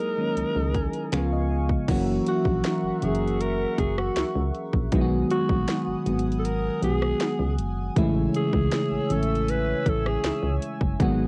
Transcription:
Already playing: fm electric piano F#3 G#3 A#3 D#4 E4, analog synth pad G#4 D#5 A#5 D#6, alto saxophone A#4
0.18 fm electric piano D#3 F#3 G#3 A#3 C#4
0.37 fm bass C#2, closed hi-hat
0.56 fm bass C#2
0.74 fm electric piano G#5, kick, closed hi-hat
0.93 closed hi-hat
1.12 fm bass C#2, fm electric piano C#3 F3 G#3 B3 F4 F5, analog synth pad F5 G#5 C#6, finger snap, closed hi-hat
1.32 fm electric piano D#5
1.51 fm electric piano D#5
1.69 kick
1.88 fm bass F#1, fm electric piano E3 F#3 A#3 C#4 F#4, analog synth pad A#4 E5 F#5 C#6, kick, closed hi-hat, crash
2.27 alto saxophone F#4, closed hi-hat
2.45 fm bass A#1, kick
2.64 snare, closed hi-hat
2.84 fm bass F#1
3.02 fm bass F#1, fm electric piano E3 F#3 A#3 C#4 G#4, alto saxophone G#4, closed hi-hat
3.15 closed hi-hat
3.28 closed hi-hat
3.41 alto saxophone A#4, closed hi-hat
3.78 fm bass F#1, alto saxophone G#4, kick, closed hi-hat
3.98 alto saxophone F#4, cross-stick
4.16 fm bass C#2, snare, closed hi-hat
4.35 fm bass C#2
4.55 closed hi-hat
4.73 fm bass A#1, kick
4.92 fm bass B1, fm electric piano D#3 F#3 G#3 B3 E4, analog synth pad B3 F#5 G#5 D#6, kick, closed hi-hat
5.01 fm electric piano F#4
5.30 alto saxophone F#4, closed hi-hat
5.49 fm bass A#1, kick
5.68 snare, closed hi-hat
5.87 fm bass G#1
6.06 fm bass G#1, fm electric piano D#3 F#3 G#3 B3 F#4, closed hi-hat
6.19 closed hi-hat
6.32 closed hi-hat
6.39 alto saxophone A4
6.45 alto saxophone A#4, closed hi-hat
6.82 fm bass B1, fm electric piano D#3 F#3 G#3 B3 F#4, alto saxophone G#4, closed hi-hat
7.02 cross-stick
7.20 snare, closed hi-hat
7.39 fm bass C#2
7.58 fm bass F#1, closed hi-hat
7.96 fm bass A1, fm electric piano C#3 E3 G#3 A3 E4, analog synth pad C#5 E5 E6, kick, closed hi-hat
8.34 alto saxophone G#4, closed hi-hat
8.53 fm bass C#2, kick
8.71 snare, closed hi-hat
8.91 fm bass A1
9.10 fm bass A1, fm electric piano C#3 E3 A3 C#4, alto saxophone A4, closed hi-hat
9.23 closed hi-hat
9.35 closed hi-hat
9.49 alto saxophone B4, closed hi-hat
9.86 fm bass A1, alto saxophone A4, kick, closed hi-hat
10.06 alto saxophone G#4, cross-stick
10.24 fm bass C#2, snare, closed hi-hat
10.43 fm bass C#2
10.62 closed hi-hat
10.81 fm bass F#1, kick
11.00 fm bass G#1, fm electric piano D#3 F#3 G#3 B3 F#4, analog synth pad B4 F#5 D#6, kick, closed hi-hat

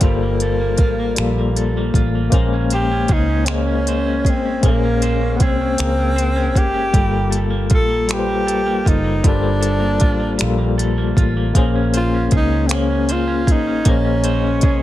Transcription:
Already playing: clean electric guitar A#3 F4 A4, tine electric piano A#3 F4 A4
0.00 fingered electric bass G1, tine electric piano G3 F4 A4, clean electric guitar G3, tenor saxophone A#3, kick, closed hi-hat
0.04 tine electric piano C5
0.22 clean electric guitar A#3
0.40 clean electric guitar A4, closed hi-hat
0.61 clean electric guitar A#3
0.78 fingered electric bass A1, clean electric guitar F4, kick, closed hi-hat
1.00 clean electric guitar A#3
1.15 fingered electric bass A#1, tine electric piano G3 F4 A4, finger snap, closed hi-hat
1.19 clean electric guitar G3, tine electric piano A#3
1.38 clean electric guitar A#3
1.56 clean electric guitar A4, closed hi-hat
1.77 clean electric guitar A#3
1.94 fingered electric bass A1, clean electric guitar F4, kick, closed hi-hat
2.15 clean electric guitar A#3
2.30 fingered electric bass A#1, tine electric piano G#3 A#3 C#4 C5, clean electric guitar A#3, kick, closed hi-hat
2.53 clean electric guitar C#4
2.70 clean electric guitar C5, closed hi-hat
2.74 tenor saxophone G4
2.92 clean electric guitar C#4
3.08 fingered electric bass C#2, clean electric guitar G#4, kick, closed hi-hat
3.13 tenor saxophone D#4
3.29 clean electric guitar C#4
3.45 tine electric piano A#3 G#4 C5, clean electric guitar A#3, tenor saxophone C4, finger snap, closed hi-hat
3.51 tenor saxophone C#4, tine electric piano D#5
3.68 clean electric guitar C#4
3.87 clean electric guitar C5, closed hi-hat
4.07 clean electric guitar C#4
4.25 fingered electric bass A1, clean electric guitar G#4, kick, closed hi-hat
4.30 tenor saxophone C4
4.46 clean electric guitar C#4
4.62 fingered electric bass A#1, tine electric piano A#3 G#4 C5, clean electric guitar A#3, kick, closed hi-hat
4.66 tenor saxophone A#3, tine electric piano C#4
4.84 clean electric guitar C#4
5.02 clean electric guitar C5, closed hi-hat
5.21 clean electric guitar C#4
5.36 tenor saxophone B3, closed hi-hat
5.40 fingered electric bass C2, tenor saxophone C4, clean electric guitar G#4, kick
5.61 clean electric guitar C#4
5.78 fingered electric bass C#2, tine electric piano A#3 G#4 C5, clean electric guitar A#3, finger snap, closed hi-hat
5.82 tine electric piano A#4
5.98 clean electric guitar C#4
6.16 clean electric guitar C5, closed hi-hat
6.36 clean electric guitar C#4
6.55 fingered electric bass F#1, tenor saxophone G4, clean electric guitar G#4, kick, closed hi-hat
6.74 clean electric guitar C#4
6.93 fingered electric bass G1, tine electric piano G3 F4 A4, clean electric guitar G3, kick, closed hi-hat
6.97 tine electric piano A#3
7.11 clean electric guitar A#3
7.30 clean electric guitar A4, closed hi-hat
7.50 clean electric guitar A#3
7.70 fingered electric bass A#1, clean electric guitar F4, kick, closed hi-hat
7.74 tenor saxophone A4
7.89 clean electric guitar A#3
8.07 clean electric guitar G3, tine electric piano G3 F4 A4, finger snap, closed hi-hat
8.12 tenor saxophone G4, tine electric piano B4
8.19 tine electric piano C5
8.28 clean electric guitar A#3
8.47 clean electric guitar A4, closed hi-hat
8.66 clean electric guitar A#3
8.85 fingered electric bass F#1, tenor saxophone D#4, clean electric guitar F4, kick, closed hi-hat
9.04 clean electric guitar A#3
9.23 fingered electric bass G1, tine electric piano G3 F4 A4, clean electric guitar G3, kick, closed hi-hat
9.28 tenor saxophone D4, tine electric piano A#4
9.34 tine electric piano C5
9.43 clean electric guitar A#3
9.61 clean electric guitar A4, closed hi-hat
9.80 clean electric guitar A#3
10.00 fingered electric bass A1, clean electric guitar F4, kick, closed hi-hat
10.20 clean electric guitar A#3
10.38 fingered electric bass A#1, clean electric guitar G3, tine electric piano G3 F4 A4, finger snap, closed hi-hat
10.43 tine electric piano A#3
10.58 clean electric guitar A#3
10.78 clean electric guitar A4, closed hi-hat
10.98 clean electric guitar A#3
11.17 fingered electric bass A1, clean electric guitar F4, kick, closed hi-hat
11.37 clean electric guitar A#3
11.54 fingered electric bass A#1, tine electric piano A#3 G#4 C5, clean electric guitar A#3, kick, closed hi-hat
11.58 tine electric piano C#4
11.76 clean electric guitar C#4
11.94 tenor saxophone F4, clean electric guitar C5, closed hi-hat
12.14 clean electric guitar C#4
12.31 fingered electric bass C#2, clean electric guitar G#4, kick, closed hi-hat
12.36 tenor saxophone D#4
12.52 clean electric guitar C#4
12.67 tine electric piano A#3, tenor saxophone C4, closed hi-hat
12.71 clean electric guitar A#3, tine electric piano C#4 G#4 C5, tenor saxophone C#4, finger snap
12.90 clean electric guitar C#4
13.09 clean electric guitar C5, closed hi-hat
13.13 tenor saxophone F4
13.28 clean electric guitar C#4
13.47 fingered electric bass A1, clean electric guitar G#4, kick, closed hi-hat
13.52 tenor saxophone D#4
13.67 clean electric guitar C#4
13.85 fingered electric bass A#1, clean electric guitar A#3, tine electric piano A#3 G#4 C5, kick, closed hi-hat
13.90 tenor saxophone C#4, tine electric piano D#5
14.05 clean electric guitar C#4
14.24 clean electric guitar C5, closed hi-hat
14.44 clean electric guitar C#4
14.61 fingered electric bass C2, clean electric guitar G#4, kick, closed hi-hat

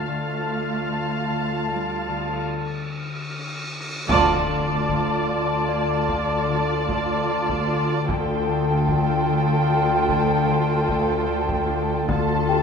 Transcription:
Already playing: harp D4, violin section F6 A6
0.08 double bass section D2, harp D3, cello section A3, viola section F4, violin section F5 A5, cymbal swell
0.48 harp D4
0.89 harp D3
1.29 harp D3
1.68 harp D3, cello section G3
2.08 harp D3
4.09 cello section D2, double bass section D2, harp D3, viola section F4, violin section D5 A5, taiko, impact
4.49 harp D4
4.89 harp D3, taiko
5.29 harp D3
5.68 harp D3, celesta D5
6.09 harp D3, taiko
6.49 harp D3
6.89 harp D3, taiko
7.29 harp D3
7.49 taiko
7.69 harp D4
8.09 cello section D2, double bass section D2, harp D3, viola section F4, violin section A4 G5, taiko
8.49 harp D4
8.89 harp D3, taiko
9.29 harp D3
9.69 harp D3
10.09 harp D3, taiko
10.49 harp D3
10.89 harp D3, taiko
11.28 harp D3
11.49 taiko
11.69 harp D4
12.09 cello section D2, double bass section D2, harp D3, viola section F4, violin section A4 A5, taiko
12.49 harp D4, celesta G4 G5

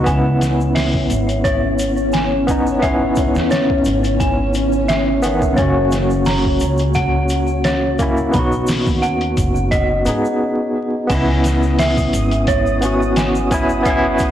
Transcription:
0.04 upright bass C#2, tine electric piano B3 C#4, string machine C#4 C#5, synth bell G#5, kick, closed hi-hat, shaker
0.41 snare, closed hi-hat, shaker
0.60 shaker
0.75 synth bell E5, snare, open hi-hat, shaker
0.94 kick
1.10 upright bass G#1, closed hi-hat, shaker
1.29 closed hi-hat, shaker
1.44 synth bell C#5, kick, closed hi-hat, shaker
1.79 closed hi-hat, shaker
1.97 shaker
2.12 synth bell G#5, snare, closed hi-hat, shaker
2.47 tine electric piano B3 C#4 D#4, kick, closed hi-hat, shaker
2.66 shaker
2.80 tine electric piano B3 C#4, synth bell E5, kick, closed hi-hat, shaker
2.87 tine electric piano E4
3.16 kick, closed hi-hat, shaker
3.35 upright bass E2, snare, shaker
3.51 synth bell C#5, snare, closed hi-hat, shaker
3.70 kick
3.85 upright bass G#1, closed hi-hat, shaker
4.04 closed hi-hat, shaker
4.20 synth bell G#5, kick, closed hi-hat, shaker
4.54 closed hi-hat, shaker
4.72 shaker
4.88 synth bell E5, snare, closed hi-hat, shaker
5.22 tine electric piano D#3 B3 C#4, closed hi-hat, shaker
5.42 kick, shaker
5.54 tine electric piano A#3 C#4, synth bell C#5, kick, closed hi-hat, shaker
5.58 upright bass F#1, tine electric piano F#4
5.92 snare, closed hi-hat, shaker
6.10 shaker
6.25 synth bell A#5, snare, open hi-hat, shaker
6.45 kick
6.60 upright bass C#2, closed hi-hat, shaker
6.78 closed hi-hat, shaker
6.94 synth bell F#5, kick, closed hi-hat, shaker
7.29 closed hi-hat, shaker
7.47 shaker
7.64 synth bell C#5, snare, closed hi-hat, shaker
7.99 tine electric piano A#3 C#4 E4, kick, closed hi-hat, shaker
8.17 shaker
8.31 upright bass B1, tine electric piano B3, synth bell B5, kick, closed hi-hat, shaker
8.35 tine electric piano D#4 F#4
8.52 shaker
8.67 snare, open hi-hat, shaker
8.87 upright bass D#2, kick, shaker
9.02 synth bell F#5, closed hi-hat, shaker
9.21 closed hi-hat
9.37 upright bass F#1, kick, closed hi-hat, shaker
9.55 shaker
9.71 synth bell D#5, kick, closed hi-hat, shaker
10.05 upright bass G#2, tine electric piano B3 D#4 G#4, closed hi-hat, shaker
10.25 shaker
11.07 upright bass C#2, tine electric piano B3 C#4, string machine C#4 C#5, synth bell G#5, synth texture D#6, kick, closed hi-hat, crash, shaker
11.15 tine electric piano E4
11.44 snare, closed hi-hat, shaker
11.63 shaker
11.79 synth bell E5, snare, open hi-hat, shaker
11.97 kick, shaker
12.13 upright bass G#1, closed hi-hat, shaker
12.31 closed hi-hat, shaker
12.47 synth bell C#5, kick, closed hi-hat, shaker
12.66 shaker
12.81 tine electric piano B3 C#4 F#4, closed hi-hat, shaker
13.02 shaker
13.16 synth bell G#5, snare, closed hi-hat, shaker
13.35 shaker
13.50 tine electric piano B3 C#4 E4, kick, closed hi-hat, shaker
13.69 shaker
13.83 tine electric piano B3 C#4, synth bell E5, kick, closed hi-hat, shaker
13.90 tine electric piano E4
14.19 kick, closed hi-hat, shaker

